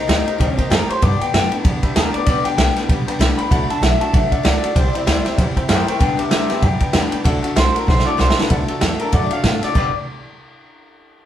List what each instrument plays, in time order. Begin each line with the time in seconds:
Already playing: clean electric guitar D#4
0.07 upright bass D2, steel-string acoustic guitar C3 G3 A#3 D#4 G4, upright piano C5 D#5 G5, snare, ride
0.26 steel-string acoustic guitar A#3 D#4 G4, upright piano C5 D#5 G5, muted upright bass stroke, ride
0.38 upright bass D#2, steel-string acoustic guitar G3 A#3 D#4 G4, upright piano C5 D#5 G5, kick, ride
0.57 steel-string acoustic guitar A#3 D#4 G4, upright piano C5 D#5 G5, muted upright bass stroke, kick, ride
0.70 upright bass F2, steel-string acoustic guitar C3 G3 A#3 D#4 G4, clean electric guitar A#4, upright piano C5 D#5 G5, snare, ride
0.88 steel-string acoustic guitar A#3 D#4 G4, upright piano C5 D#5 G5, clean electric guitar C5, muted upright bass stroke, ride
1.01 steel-string acoustic guitar G2 D3 G3 B3 D4 G4, upright bass G2, upright piano B4 D5 G5, clean electric guitar D5, kick, ride
1.20 steel-string acoustic guitar G3 B3 D4 G4, upright piano B4 D5 G5, clean electric guitar G5, muted upright bass stroke, ride
1.33 upright bass F#2, steel-string acoustic guitar G2 D3 G3 B3 D4 G4, upright piano B4 D5 A5, clean electric guitar G5, snare, ride
1.51 steel-string acoustic guitar G3 B3 D4 G4, upright piano B4 D5 G5, muted upright bass stroke, ride
1.64 upright bass E2, steel-string acoustic guitar G3 B3 D4 G4, upright piano B4 D5 A5, kick, ride
1.82 steel-string acoustic guitar G3 B3 D4 G4, upright piano B4 D5 E5, muted upright bass stroke, kick, ride
1.96 upright bass D#2, steel-string acoustic guitar G2 D3 G3 B3 D4 G4, clean electric guitar A#4, upright piano B4 D5 G5, snare, ride
2.13 steel-string acoustic guitar B3 D4 G4, upright piano B4 D5 G5, clean electric guitar D5, muted upright bass stroke, ride
2.18 steel-string acoustic guitar G3
2.26 upright bass D2, steel-string acoustic guitar G2 D3 G3 B3 D4 G4, upright piano B4 D5 G5, clean electric guitar D5, kick, ride
2.44 steel-string acoustic guitar B3 D4 G4, upright piano B4 D5 F#5, clean electric guitar G5, muted upright bass stroke, ride
2.49 steel-string acoustic guitar G3
2.57 upright bass C2, steel-string acoustic guitar G2 D3 G3 B3 D4 G4, upright piano B4 D5 G5, clean electric guitar G5, snare, ride
2.75 steel-string acoustic guitar B3 D4 G4, upright piano B4 D5 G5, muted upright bass stroke, snare, ride
2.80 steel-string acoustic guitar G3
2.88 upright bass B1, steel-string acoustic guitar G3 B3 D4, upright piano B4 D5 G5, kick, ride
2.92 steel-string acoustic guitar G4
3.07 steel-string acoustic guitar G3 B3 D4 G4, upright piano B4 D5 G5, muted upright bass stroke, ride
3.19 upright bass C2, steel-string acoustic guitar G2 D3 G3 B3 D4 G4, upright piano B4 D5 E5, snare, ride
3.38 steel-string acoustic guitar G3 B3 D4 G4, upright piano B4 D5 G5, clean electric guitar B5, muted upright bass stroke, ride
3.51 upright bass D2, steel-string acoustic guitar D3 A3 D4 F#4 A4, upright piano A4 D5 F#5, kick, ride
3.68 steel-string acoustic guitar F#4 A4, upright piano A4 D5 F#5, clean electric guitar A5, muted upright bass stroke, ride
3.73 steel-string acoustic guitar D4
3.81 upright bass B1, steel-string acoustic guitar D3 A3 D4 F#4 A4, upright piano A4 D5 F#5, clean electric guitar E5, snare, ride
3.99 steel-string acoustic guitar F#4 A4, upright piano A4 D5 F#5, clean electric guitar A5, muted upright bass stroke, ride
4.03 steel-string acoustic guitar D4
4.12 upright bass A1, steel-string acoustic guitar A3 D4 F#4 A4, upright piano A4 D5 F#5, clean electric guitar E5, kick, ride
4.32 steel-string acoustic guitar D4 F#4 A4, upright piano A4 D5 F#5, clean electric guitar D5, muted upright bass stroke, kick, ride
4.43 upright bass C#2, steel-string acoustic guitar D3 A3 D4 F#4 A4, upright piano A4 D5 F#5, clean electric guitar D5, snare, ride
4.61 steel-string acoustic guitar D4 F#4 A4, upright piano A4 D5 F#5, muted upright bass stroke, ride
4.76 upright bass C2, steel-string acoustic guitar C3 G3 C4 E4 G4, upright piano C5 E5 G5, kick, ride
4.93 steel-string acoustic guitar C4 E4 G4, upright piano C5 E5 G5, muted upright bass stroke, ride
5.07 upright bass D2, steel-string acoustic guitar C3 G3 C4 E4 G4, upright piano C5 E5 G5, snare, ride
5.25 steel-string acoustic guitar C4 E4 G4, upright piano C5 E5 G5, muted upright bass stroke, snare, ride
5.38 upright bass E2, steel-string acoustic guitar G3 C4 E4 G4, upright piano C5 E5 G5, kick, ride
5.56 steel-string acoustic guitar C4 E4 G4, upright piano C5 E5 G5, muted upright bass stroke, kick, ride
5.68 upright bass F#2, steel-string acoustic guitar C3 G3 C4 E4 G4, clean electric guitar A#4 G5, upright piano C5 E5 G5, snare, ride
5.87 steel-string acoustic guitar C4 E4 G4, clean electric guitar A#4 G5, upright piano C5 E5 G5, muted upright bass stroke, ride
5.99 steel-string acoustic guitar G2 D3 G3 B3 D4 G4, upright bass G2, upright piano B4 D5 G5, clean electric guitar B4 G5, kick, ride
6.17 steel-string acoustic guitar G3 B3 D4 G4, clean electric guitar G4 E5, upright piano B4 D5 G5, muted upright bass stroke, ride
6.31 upright bass D2, steel-string acoustic guitar G2 D3 G3 B3 D4 G4, clean electric guitar G4 E5, upright piano B4 D5 G5, snare, ride
6.49 steel-string acoustic guitar G3 B3 D4 G4, clean electric guitar G4 E5, upright piano B4 D5 G5, muted upright bass stroke, snare, ride
6.62 upright bass F#2, steel-string acoustic guitar G3 B3 D4 G4, upright piano B4 D5 G5, clean electric guitar G5, kick, ride
6.80 steel-string acoustic guitar G3 B3 D4 G4, upright piano B4 D5 G5, muted upright bass stroke, kick, ride
6.93 upright bass E2, steel-string acoustic guitar G2 D3 G3 B3 D4 G4, upright piano B4 D5 G5, snare, ride
7.11 steel-string acoustic guitar G3 B3 D4 G4, upright piano B4 D5 G5, muted upright bass stroke, ride
7.24 upright bass D2, steel-string acoustic guitar D3 A3 D4 F#4 A4, upright piano A4 D5 F#5, kick, ride
7.42 steel-string acoustic guitar D4 F#4 A4, upright piano A4 D5 F#5, muted upright bass stroke, ride
7.56 upright bass C2, steel-string acoustic guitar D3 A3 D4 F#4 A4, clean electric guitar C5, upright piano D5 F#5, snare, ride
7.74 steel-string acoustic guitar D4 F#4 A4, upright piano A4 D5 F#5, clean electric guitar A#4, muted upright bass stroke, ride
7.86 upright bass B1, steel-string acoustic guitar A3 D4 F#4 A4, upright piano A4 D5 F#5, clean electric guitar C5, kick, snare
7.99 snare
8.04 steel-string acoustic guitar D4 F#4 A4, upright piano A4 D5 F#5, clean electric guitar D5, muted upright bass stroke
8.17 upright bass C2, steel-string acoustic guitar D3 A3 D4 F#4 A4, upright piano A4 D5 F#5, clean electric guitar C5, snare
8.30 snare
8.36 steel-string acoustic guitar D4 F#4 A4, upright piano A4 D5 F#5, clean electric guitar B4, muted upright bass stroke
8.40 snare
8.49 upright bass D2, steel-string acoustic guitar D3 A3 D4 F#4 A4, upright piano A4 D5 F#5, kick, ride
8.68 steel-string acoustic guitar D4 F#4 A4, upright piano A4 D5 A5, muted upright bass stroke, ride
8.81 upright bass E2, steel-string acoustic guitar A3 D4 F#4 A4, upright piano A4 D5 F#5, snare, ride
8.99 steel-string acoustic guitar D4 F#4 A4, upright piano A4 D5 A5, clean electric guitar A#4, muted upright bass stroke, ride
9.12 upright bass F#2, steel-string acoustic guitar D3 A3 D4 F#4 A4, upright piano A4 D5 F#5, clean electric guitar D5, kick, ride
9.31 steel-string acoustic guitar D4 F#4 A4, upright piano A4 D5 F#5, clean electric guitar F5, muted upright bass stroke, ride
9.44 upright bass A2, steel-string acoustic guitar A3 D4 F#4 A4, upright piano A4 D5 F#5, kick, snare, ride
9.61 steel-string acoustic guitar D4 F#4 A4, upright piano A4 D5 F#5, clean electric guitar D5, muted upright bass stroke, snare, ride
9.75 upright bass G1, steel-string acoustic guitar G2 D3 G3 B3 D4 B4, upright piano B4 D5 G5, clean electric guitar D5, kick, crash